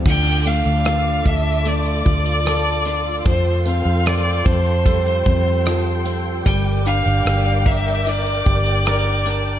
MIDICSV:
0, 0, Header, 1, 7, 480
1, 0, Start_track
1, 0, Tempo, 800000
1, 35, Time_signature, 4, 2, 24, 8
1, 5756, End_track
2, 0, Start_track
2, 0, Title_t, "Violin"
2, 0, Program_c, 0, 40
2, 45, Note_on_c, 0, 79, 99
2, 281, Note_on_c, 0, 77, 85
2, 290, Note_off_c, 0, 79, 0
2, 763, Note_on_c, 0, 76, 80
2, 772, Note_off_c, 0, 77, 0
2, 1004, Note_on_c, 0, 74, 91
2, 1013, Note_off_c, 0, 76, 0
2, 1957, Note_off_c, 0, 74, 0
2, 1960, Note_on_c, 0, 72, 72
2, 2181, Note_off_c, 0, 72, 0
2, 2197, Note_on_c, 0, 77, 68
2, 2436, Note_on_c, 0, 74, 77
2, 2445, Note_off_c, 0, 77, 0
2, 2676, Note_on_c, 0, 72, 74
2, 2685, Note_off_c, 0, 74, 0
2, 3636, Note_off_c, 0, 72, 0
2, 3876, Note_on_c, 0, 79, 90
2, 3984, Note_off_c, 0, 79, 0
2, 4119, Note_on_c, 0, 77, 90
2, 4602, Note_on_c, 0, 76, 83
2, 4611, Note_off_c, 0, 77, 0
2, 4846, Note_on_c, 0, 74, 93
2, 4855, Note_off_c, 0, 76, 0
2, 5756, Note_off_c, 0, 74, 0
2, 5756, End_track
3, 0, Start_track
3, 0, Title_t, "String section"
3, 0, Program_c, 1, 48
3, 33, Note_on_c, 1, 65, 58
3, 33, Note_on_c, 1, 69, 66
3, 36, Note_on_c, 1, 74, 56
3, 36, Note_on_c, 1, 86, 61
3, 1936, Note_off_c, 1, 74, 0
3, 1936, Note_off_c, 1, 86, 0
3, 1957, Note_on_c, 1, 79, 60
3, 1958, Note_on_c, 1, 84, 75
3, 3850, Note_off_c, 1, 65, 0
3, 3850, Note_off_c, 1, 69, 0
3, 3858, Note_off_c, 1, 84, 0
3, 3879, Note_on_c, 1, 74, 65
3, 3880, Note_on_c, 1, 70, 72
3, 3880, Note_on_c, 1, 86, 72
3, 5756, Note_off_c, 1, 70, 0
3, 5756, Note_off_c, 1, 74, 0
3, 5756, Note_off_c, 1, 79, 0
3, 5756, Note_off_c, 1, 86, 0
3, 5756, End_track
4, 0, Start_track
4, 0, Title_t, "Steel-string acoustic guitar"
4, 0, Program_c, 2, 25
4, 0, Note_on_c, 2, 60, 46
4, 0, Note_on_c, 2, 65, 48
4, 0, Note_on_c, 2, 69, 50
4, 37, Note_on_c, 2, 50, 78
4, 83, Note_off_c, 2, 60, 0
4, 275, Note_on_c, 2, 62, 51
4, 511, Note_off_c, 2, 65, 0
4, 514, Note_on_c, 2, 65, 55
4, 752, Note_off_c, 2, 69, 0
4, 754, Note_on_c, 2, 69, 52
4, 994, Note_on_c, 2, 57, 49
4, 1232, Note_off_c, 2, 65, 0
4, 1234, Note_on_c, 2, 65, 41
4, 1474, Note_off_c, 2, 69, 0
4, 1476, Note_on_c, 2, 69, 57
4, 1706, Note_off_c, 2, 62, 0
4, 1713, Note_on_c, 2, 62, 54
4, 1954, Note_off_c, 2, 50, 0
4, 1957, Note_on_c, 2, 53, 76
4, 2002, Note_off_c, 2, 62, 0
4, 2195, Note_on_c, 2, 60, 51
4, 2432, Note_off_c, 2, 65, 0
4, 2434, Note_on_c, 2, 65, 59
4, 2673, Note_off_c, 2, 69, 0
4, 2675, Note_on_c, 2, 69, 59
4, 2912, Note_off_c, 2, 57, 0
4, 2915, Note_on_c, 2, 55, 60
4, 3147, Note_off_c, 2, 65, 0
4, 3154, Note_on_c, 2, 65, 43
4, 3389, Note_off_c, 2, 69, 0
4, 3396, Note_on_c, 2, 69, 51
4, 3627, Note_off_c, 2, 60, 0
4, 3634, Note_on_c, 2, 60, 59
4, 3875, Note_off_c, 2, 55, 0
4, 3876, Note_off_c, 2, 53, 0
4, 3877, Note_on_c, 2, 55, 83
4, 3923, Note_off_c, 2, 60, 0
4, 3923, Note_off_c, 2, 65, 0
4, 3924, Note_off_c, 2, 69, 0
4, 4117, Note_on_c, 2, 62, 60
4, 4358, Note_on_c, 2, 67, 62
4, 4597, Note_on_c, 2, 70, 61
4, 4831, Note_off_c, 2, 62, 0
4, 4838, Note_on_c, 2, 62, 56
4, 5076, Note_off_c, 2, 67, 0
4, 5078, Note_on_c, 2, 67, 51
4, 5312, Note_off_c, 2, 70, 0
4, 5319, Note_on_c, 2, 70, 66
4, 5549, Note_off_c, 2, 62, 0
4, 5556, Note_on_c, 2, 62, 64
4, 5756, Note_off_c, 2, 55, 0
4, 5756, Note_off_c, 2, 62, 0
4, 5756, Note_off_c, 2, 67, 0
4, 5756, Note_off_c, 2, 70, 0
4, 5756, End_track
5, 0, Start_track
5, 0, Title_t, "Grand piano"
5, 0, Program_c, 3, 0
5, 0, Control_c, 3, 64, 127
5, 37, Note_on_c, 3, 50, 55
5, 44, Control_c, 3, 64, 0
5, 150, Control_c, 3, 64, 127
5, 276, Note_on_c, 3, 57, 47
5, 516, Note_on_c, 3, 65, 38
5, 753, Note_on_c, 3, 69, 45
5, 985, Note_off_c, 3, 57, 0
5, 994, Note_on_c, 3, 57, 45
5, 1220, Note_off_c, 3, 65, 0
5, 1229, Note_on_c, 3, 65, 55
5, 1462, Note_off_c, 3, 69, 0
5, 1471, Note_on_c, 3, 69, 51
5, 1931, Note_off_c, 3, 57, 0
5, 1931, Note_off_c, 3, 65, 0
5, 1932, Note_off_c, 3, 50, 0
5, 1939, Note_off_c, 3, 69, 0
5, 1950, Note_on_c, 3, 53, 53
5, 1964, Control_c, 3, 64, 0
5, 2067, Control_c, 3, 64, 127
5, 2194, Note_on_c, 3, 60, 52
5, 2433, Note_on_c, 3, 69, 45
5, 2662, Note_off_c, 3, 60, 0
5, 2671, Note_on_c, 3, 60, 52
5, 2902, Note_off_c, 3, 69, 0
5, 2912, Note_on_c, 3, 69, 55
5, 3145, Note_off_c, 3, 60, 0
5, 3154, Note_on_c, 3, 60, 54
5, 3389, Note_off_c, 3, 53, 0
5, 3398, Note_on_c, 3, 53, 52
5, 3849, Note_off_c, 3, 69, 0
5, 3853, Note_off_c, 3, 60, 0
5, 3862, Note_off_c, 3, 53, 0
5, 3874, Note_on_c, 3, 55, 66
5, 3884, Control_c, 3, 64, 0
5, 3996, Control_c, 3, 64, 127
5, 4117, Note_on_c, 3, 62, 50
5, 4359, Note_on_c, 3, 67, 52
5, 4596, Note_on_c, 3, 70, 52
5, 4832, Note_off_c, 3, 62, 0
5, 4841, Note_on_c, 3, 62, 54
5, 5069, Note_off_c, 3, 67, 0
5, 5078, Note_on_c, 3, 67, 52
5, 5310, Note_off_c, 3, 70, 0
5, 5319, Note_on_c, 3, 70, 61
5, 5756, Note_off_c, 3, 55, 0
5, 5756, Note_off_c, 3, 62, 0
5, 5756, Note_off_c, 3, 67, 0
5, 5756, Note_off_c, 3, 70, 0
5, 5756, End_track
6, 0, Start_track
6, 0, Title_t, "Fingered electric bass"
6, 0, Program_c, 4, 33
6, 33, Note_on_c, 4, 38, 88
6, 370, Note_off_c, 4, 38, 0
6, 395, Note_on_c, 4, 38, 68
6, 731, Note_off_c, 4, 38, 0
6, 754, Note_on_c, 4, 38, 92
6, 1211, Note_off_c, 4, 38, 0
6, 1236, Note_on_c, 4, 38, 70
6, 1932, Note_off_c, 4, 38, 0
6, 1954, Note_on_c, 4, 41, 88
6, 2291, Note_off_c, 4, 41, 0
6, 2312, Note_on_c, 4, 41, 73
6, 2650, Note_off_c, 4, 41, 0
6, 2675, Note_on_c, 4, 41, 89
6, 3131, Note_off_c, 4, 41, 0
6, 3155, Note_on_c, 4, 41, 85
6, 3851, Note_off_c, 4, 41, 0
6, 3876, Note_on_c, 4, 31, 89
6, 4212, Note_off_c, 4, 31, 0
6, 4235, Note_on_c, 4, 31, 78
6, 4347, Note_off_c, 4, 31, 0
6, 4351, Note_on_c, 4, 31, 83
6, 5049, Note_off_c, 4, 31, 0
6, 5079, Note_on_c, 4, 31, 82
6, 5756, Note_off_c, 4, 31, 0
6, 5756, End_track
7, 0, Start_track
7, 0, Title_t, "Drums"
7, 32, Note_on_c, 9, 49, 78
7, 34, Note_on_c, 9, 36, 97
7, 92, Note_off_c, 9, 49, 0
7, 94, Note_off_c, 9, 36, 0
7, 271, Note_on_c, 9, 42, 52
7, 331, Note_off_c, 9, 42, 0
7, 511, Note_on_c, 9, 42, 57
7, 517, Note_on_c, 9, 37, 92
7, 571, Note_off_c, 9, 42, 0
7, 577, Note_off_c, 9, 37, 0
7, 754, Note_on_c, 9, 36, 80
7, 755, Note_on_c, 9, 42, 66
7, 814, Note_off_c, 9, 36, 0
7, 815, Note_off_c, 9, 42, 0
7, 993, Note_on_c, 9, 42, 68
7, 1053, Note_off_c, 9, 42, 0
7, 1114, Note_on_c, 9, 42, 44
7, 1174, Note_off_c, 9, 42, 0
7, 1235, Note_on_c, 9, 42, 51
7, 1236, Note_on_c, 9, 36, 78
7, 1295, Note_off_c, 9, 42, 0
7, 1296, Note_off_c, 9, 36, 0
7, 1355, Note_on_c, 9, 42, 46
7, 1415, Note_off_c, 9, 42, 0
7, 1476, Note_on_c, 9, 42, 63
7, 1482, Note_on_c, 9, 37, 83
7, 1536, Note_off_c, 9, 42, 0
7, 1542, Note_off_c, 9, 37, 0
7, 1712, Note_on_c, 9, 42, 66
7, 1722, Note_on_c, 9, 37, 27
7, 1772, Note_off_c, 9, 42, 0
7, 1782, Note_off_c, 9, 37, 0
7, 1954, Note_on_c, 9, 42, 81
7, 1955, Note_on_c, 9, 36, 98
7, 2014, Note_off_c, 9, 42, 0
7, 2015, Note_off_c, 9, 36, 0
7, 2193, Note_on_c, 9, 42, 57
7, 2253, Note_off_c, 9, 42, 0
7, 2437, Note_on_c, 9, 42, 58
7, 2443, Note_on_c, 9, 37, 90
7, 2497, Note_off_c, 9, 42, 0
7, 2503, Note_off_c, 9, 37, 0
7, 2675, Note_on_c, 9, 36, 85
7, 2678, Note_on_c, 9, 42, 69
7, 2735, Note_off_c, 9, 36, 0
7, 2738, Note_off_c, 9, 42, 0
7, 2914, Note_on_c, 9, 36, 77
7, 2916, Note_on_c, 9, 42, 76
7, 2974, Note_off_c, 9, 36, 0
7, 2976, Note_off_c, 9, 42, 0
7, 3036, Note_on_c, 9, 42, 39
7, 3096, Note_off_c, 9, 42, 0
7, 3156, Note_on_c, 9, 42, 55
7, 3157, Note_on_c, 9, 36, 82
7, 3216, Note_off_c, 9, 42, 0
7, 3217, Note_off_c, 9, 36, 0
7, 3394, Note_on_c, 9, 42, 68
7, 3400, Note_on_c, 9, 37, 93
7, 3454, Note_off_c, 9, 42, 0
7, 3460, Note_off_c, 9, 37, 0
7, 3633, Note_on_c, 9, 42, 66
7, 3693, Note_off_c, 9, 42, 0
7, 3876, Note_on_c, 9, 36, 95
7, 3876, Note_on_c, 9, 42, 79
7, 3936, Note_off_c, 9, 36, 0
7, 3936, Note_off_c, 9, 42, 0
7, 4114, Note_on_c, 9, 42, 58
7, 4174, Note_off_c, 9, 42, 0
7, 4357, Note_on_c, 9, 42, 60
7, 4363, Note_on_c, 9, 37, 93
7, 4417, Note_off_c, 9, 42, 0
7, 4423, Note_off_c, 9, 37, 0
7, 4596, Note_on_c, 9, 36, 95
7, 4600, Note_on_c, 9, 42, 66
7, 4656, Note_off_c, 9, 36, 0
7, 4660, Note_off_c, 9, 42, 0
7, 4839, Note_on_c, 9, 42, 76
7, 4899, Note_off_c, 9, 42, 0
7, 4957, Note_on_c, 9, 42, 45
7, 5017, Note_off_c, 9, 42, 0
7, 5076, Note_on_c, 9, 42, 59
7, 5078, Note_on_c, 9, 36, 85
7, 5136, Note_off_c, 9, 42, 0
7, 5138, Note_off_c, 9, 36, 0
7, 5194, Note_on_c, 9, 42, 47
7, 5254, Note_off_c, 9, 42, 0
7, 5315, Note_on_c, 9, 42, 68
7, 5322, Note_on_c, 9, 37, 98
7, 5375, Note_off_c, 9, 42, 0
7, 5382, Note_off_c, 9, 37, 0
7, 5554, Note_on_c, 9, 42, 79
7, 5564, Note_on_c, 9, 37, 30
7, 5614, Note_off_c, 9, 42, 0
7, 5624, Note_off_c, 9, 37, 0
7, 5756, End_track
0, 0, End_of_file